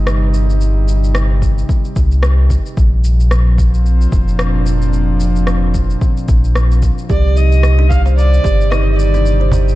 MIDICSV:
0, 0, Header, 1, 7, 480
1, 0, Start_track
1, 0, Key_signature, -3, "minor"
1, 0, Tempo, 540541
1, 540, Time_signature, 4, 2, 24, 8
1, 8660, End_track
2, 0, Start_track
2, 0, Title_t, "Kamancheh"
2, 0, Program_c, 0, 110
2, 6305, Note_on_c, 0, 74, 90
2, 6542, Note_on_c, 0, 75, 98
2, 6555, Note_off_c, 0, 74, 0
2, 7003, Note_off_c, 0, 75, 0
2, 7009, Note_on_c, 0, 77, 95
2, 7119, Note_off_c, 0, 77, 0
2, 7249, Note_on_c, 0, 74, 102
2, 7728, Note_on_c, 0, 75, 87
2, 7741, Note_off_c, 0, 74, 0
2, 7919, Note_off_c, 0, 75, 0
2, 7924, Note_on_c, 0, 75, 65
2, 7963, Note_on_c, 0, 74, 84
2, 7976, Note_off_c, 0, 75, 0
2, 8451, Note_off_c, 0, 74, 0
2, 8660, End_track
3, 0, Start_track
3, 0, Title_t, "Kalimba"
3, 0, Program_c, 1, 108
3, 6300, Note_on_c, 1, 67, 74
3, 6530, Note_off_c, 1, 67, 0
3, 6535, Note_on_c, 1, 63, 71
3, 6901, Note_off_c, 1, 63, 0
3, 6916, Note_on_c, 1, 62, 94
3, 7143, Note_off_c, 1, 62, 0
3, 7157, Note_on_c, 1, 72, 73
3, 7490, Note_off_c, 1, 72, 0
3, 7496, Note_on_c, 1, 67, 73
3, 7728, Note_off_c, 1, 67, 0
3, 7739, Note_on_c, 1, 63, 82
3, 8103, Note_off_c, 1, 63, 0
3, 8119, Note_on_c, 1, 62, 101
3, 8344, Note_off_c, 1, 62, 0
3, 8357, Note_on_c, 1, 72, 69
3, 8660, Note_off_c, 1, 72, 0
3, 8660, End_track
4, 0, Start_track
4, 0, Title_t, "Analog synth pad"
4, 0, Program_c, 2, 89
4, 0, Note_on_c, 2, 48, 78
4, 0, Note_on_c, 2, 55, 82
4, 0, Note_on_c, 2, 63, 74
4, 2455, Note_off_c, 2, 48, 0
4, 2456, Note_off_c, 2, 55, 0
4, 2459, Note_off_c, 2, 63, 0
4, 2464, Note_on_c, 2, 46, 73
4, 2757, Note_on_c, 2, 60, 70
4, 2788, Note_on_c, 2, 53, 84
4, 3457, Note_on_c, 2, 62, 65
4, 6297, Note_off_c, 2, 53, 0
4, 6301, Note_on_c, 2, 48, 78
4, 6302, Note_off_c, 2, 46, 0
4, 6302, Note_off_c, 2, 62, 0
4, 6584, Note_on_c, 2, 55, 87
4, 6988, Note_on_c, 2, 51, 76
4, 7709, Note_off_c, 2, 60, 0
4, 8660, Note_off_c, 2, 48, 0
4, 8660, Note_off_c, 2, 51, 0
4, 8660, Note_off_c, 2, 55, 0
4, 8660, End_track
5, 0, Start_track
5, 0, Title_t, "Sub bass"
5, 0, Program_c, 3, 38
5, 0, Note_on_c, 3, 31, 99
5, 1453, Note_off_c, 3, 31, 0
5, 1743, Note_on_c, 3, 36, 95
5, 2295, Note_off_c, 3, 36, 0
5, 2462, Note_on_c, 3, 34, 96
5, 3613, Note_off_c, 3, 34, 0
5, 3661, Note_on_c, 3, 29, 99
5, 5293, Note_off_c, 3, 29, 0
5, 5581, Note_on_c, 3, 34, 90
5, 6134, Note_off_c, 3, 34, 0
5, 6303, Note_on_c, 3, 36, 97
5, 7454, Note_off_c, 3, 36, 0
5, 7501, Note_on_c, 3, 31, 100
5, 8660, Note_off_c, 3, 31, 0
5, 8660, End_track
6, 0, Start_track
6, 0, Title_t, "Cajon"
6, 7153, Note_on_c, 9, 38, 57
6, 7242, Note_off_c, 9, 38, 0
6, 7494, Note_on_c, 9, 38, 59
6, 7583, Note_off_c, 9, 38, 0
6, 8346, Note_on_c, 9, 38, 34
6, 8435, Note_off_c, 9, 38, 0
6, 8450, Note_on_c, 9, 36, 83
6, 8539, Note_off_c, 9, 36, 0
6, 8660, End_track
7, 0, Start_track
7, 0, Title_t, "Drums"
7, 60, Note_on_c, 9, 37, 101
7, 66, Note_on_c, 9, 82, 42
7, 149, Note_off_c, 9, 37, 0
7, 154, Note_off_c, 9, 82, 0
7, 300, Note_on_c, 9, 82, 67
7, 389, Note_off_c, 9, 82, 0
7, 443, Note_on_c, 9, 82, 29
7, 532, Note_off_c, 9, 82, 0
7, 541, Note_on_c, 9, 82, 41
7, 630, Note_off_c, 9, 82, 0
7, 784, Note_on_c, 9, 82, 74
7, 873, Note_off_c, 9, 82, 0
7, 923, Note_on_c, 9, 82, 32
7, 1012, Note_off_c, 9, 82, 0
7, 1018, Note_on_c, 9, 37, 96
7, 1024, Note_on_c, 9, 82, 41
7, 1107, Note_off_c, 9, 37, 0
7, 1113, Note_off_c, 9, 82, 0
7, 1262, Note_on_c, 9, 36, 61
7, 1265, Note_on_c, 9, 82, 75
7, 1351, Note_off_c, 9, 36, 0
7, 1353, Note_off_c, 9, 82, 0
7, 1406, Note_on_c, 9, 82, 32
7, 1494, Note_off_c, 9, 82, 0
7, 1502, Note_on_c, 9, 36, 94
7, 1506, Note_on_c, 9, 82, 40
7, 1591, Note_off_c, 9, 36, 0
7, 1595, Note_off_c, 9, 82, 0
7, 1641, Note_on_c, 9, 82, 30
7, 1729, Note_off_c, 9, 82, 0
7, 1742, Note_on_c, 9, 36, 100
7, 1742, Note_on_c, 9, 82, 79
7, 1831, Note_off_c, 9, 36, 0
7, 1831, Note_off_c, 9, 82, 0
7, 1879, Note_on_c, 9, 82, 33
7, 1968, Note_off_c, 9, 82, 0
7, 1977, Note_on_c, 9, 37, 100
7, 1983, Note_on_c, 9, 82, 42
7, 2066, Note_off_c, 9, 37, 0
7, 2072, Note_off_c, 9, 82, 0
7, 2222, Note_on_c, 9, 36, 54
7, 2224, Note_on_c, 9, 82, 75
7, 2311, Note_off_c, 9, 36, 0
7, 2313, Note_off_c, 9, 82, 0
7, 2361, Note_on_c, 9, 82, 30
7, 2450, Note_off_c, 9, 82, 0
7, 2462, Note_on_c, 9, 36, 110
7, 2463, Note_on_c, 9, 82, 41
7, 2551, Note_off_c, 9, 36, 0
7, 2552, Note_off_c, 9, 82, 0
7, 2703, Note_on_c, 9, 82, 82
7, 2792, Note_off_c, 9, 82, 0
7, 2843, Note_on_c, 9, 82, 32
7, 2931, Note_off_c, 9, 82, 0
7, 2940, Note_on_c, 9, 37, 91
7, 2945, Note_on_c, 9, 82, 42
7, 3029, Note_off_c, 9, 37, 0
7, 3034, Note_off_c, 9, 82, 0
7, 3182, Note_on_c, 9, 36, 65
7, 3186, Note_on_c, 9, 82, 80
7, 3271, Note_off_c, 9, 36, 0
7, 3274, Note_off_c, 9, 82, 0
7, 3323, Note_on_c, 9, 82, 31
7, 3411, Note_off_c, 9, 82, 0
7, 3427, Note_on_c, 9, 82, 43
7, 3516, Note_off_c, 9, 82, 0
7, 3563, Note_on_c, 9, 82, 31
7, 3652, Note_off_c, 9, 82, 0
7, 3661, Note_on_c, 9, 36, 110
7, 3663, Note_on_c, 9, 82, 74
7, 3750, Note_off_c, 9, 36, 0
7, 3752, Note_off_c, 9, 82, 0
7, 3802, Note_on_c, 9, 82, 31
7, 3891, Note_off_c, 9, 82, 0
7, 3898, Note_on_c, 9, 37, 97
7, 3904, Note_on_c, 9, 82, 46
7, 3987, Note_off_c, 9, 37, 0
7, 3992, Note_off_c, 9, 82, 0
7, 4142, Note_on_c, 9, 82, 72
7, 4230, Note_off_c, 9, 82, 0
7, 4278, Note_on_c, 9, 82, 30
7, 4367, Note_off_c, 9, 82, 0
7, 4380, Note_on_c, 9, 82, 39
7, 4469, Note_off_c, 9, 82, 0
7, 4619, Note_on_c, 9, 82, 75
7, 4708, Note_off_c, 9, 82, 0
7, 4759, Note_on_c, 9, 82, 34
7, 4848, Note_off_c, 9, 82, 0
7, 4857, Note_on_c, 9, 37, 87
7, 4862, Note_on_c, 9, 82, 44
7, 4945, Note_off_c, 9, 37, 0
7, 4951, Note_off_c, 9, 82, 0
7, 5101, Note_on_c, 9, 82, 72
7, 5102, Note_on_c, 9, 36, 58
7, 5190, Note_off_c, 9, 36, 0
7, 5190, Note_off_c, 9, 82, 0
7, 5240, Note_on_c, 9, 82, 28
7, 5329, Note_off_c, 9, 82, 0
7, 5341, Note_on_c, 9, 36, 103
7, 5344, Note_on_c, 9, 82, 41
7, 5430, Note_off_c, 9, 36, 0
7, 5433, Note_off_c, 9, 82, 0
7, 5480, Note_on_c, 9, 82, 30
7, 5568, Note_off_c, 9, 82, 0
7, 5581, Note_on_c, 9, 36, 106
7, 5582, Note_on_c, 9, 82, 76
7, 5670, Note_off_c, 9, 36, 0
7, 5671, Note_off_c, 9, 82, 0
7, 5721, Note_on_c, 9, 82, 34
7, 5810, Note_off_c, 9, 82, 0
7, 5821, Note_on_c, 9, 37, 93
7, 5826, Note_on_c, 9, 82, 43
7, 5909, Note_off_c, 9, 37, 0
7, 5915, Note_off_c, 9, 82, 0
7, 5962, Note_on_c, 9, 82, 30
7, 6051, Note_off_c, 9, 82, 0
7, 6062, Note_on_c, 9, 36, 57
7, 6062, Note_on_c, 9, 82, 73
7, 6151, Note_off_c, 9, 36, 0
7, 6151, Note_off_c, 9, 82, 0
7, 6201, Note_on_c, 9, 82, 29
7, 6289, Note_off_c, 9, 82, 0
7, 6303, Note_on_c, 9, 36, 111
7, 6304, Note_on_c, 9, 82, 41
7, 6392, Note_off_c, 9, 36, 0
7, 6393, Note_off_c, 9, 82, 0
7, 6542, Note_on_c, 9, 82, 74
7, 6631, Note_off_c, 9, 82, 0
7, 6678, Note_on_c, 9, 82, 33
7, 6767, Note_off_c, 9, 82, 0
7, 6778, Note_on_c, 9, 37, 84
7, 6784, Note_on_c, 9, 82, 39
7, 6867, Note_off_c, 9, 37, 0
7, 6873, Note_off_c, 9, 82, 0
7, 7022, Note_on_c, 9, 36, 58
7, 7026, Note_on_c, 9, 82, 74
7, 7111, Note_off_c, 9, 36, 0
7, 7114, Note_off_c, 9, 82, 0
7, 7161, Note_on_c, 9, 82, 30
7, 7250, Note_off_c, 9, 82, 0
7, 7268, Note_on_c, 9, 82, 41
7, 7357, Note_off_c, 9, 82, 0
7, 7404, Note_on_c, 9, 82, 31
7, 7493, Note_off_c, 9, 82, 0
7, 7501, Note_on_c, 9, 36, 102
7, 7508, Note_on_c, 9, 82, 76
7, 7590, Note_off_c, 9, 36, 0
7, 7597, Note_off_c, 9, 82, 0
7, 7645, Note_on_c, 9, 82, 31
7, 7734, Note_off_c, 9, 82, 0
7, 7742, Note_on_c, 9, 37, 93
7, 7748, Note_on_c, 9, 82, 45
7, 7831, Note_off_c, 9, 37, 0
7, 7837, Note_off_c, 9, 82, 0
7, 7985, Note_on_c, 9, 82, 76
7, 8074, Note_off_c, 9, 82, 0
7, 8121, Note_on_c, 9, 82, 29
7, 8210, Note_off_c, 9, 82, 0
7, 8221, Note_on_c, 9, 82, 41
7, 8310, Note_off_c, 9, 82, 0
7, 8462, Note_on_c, 9, 82, 70
7, 8551, Note_off_c, 9, 82, 0
7, 8600, Note_on_c, 9, 82, 30
7, 8660, Note_off_c, 9, 82, 0
7, 8660, End_track
0, 0, End_of_file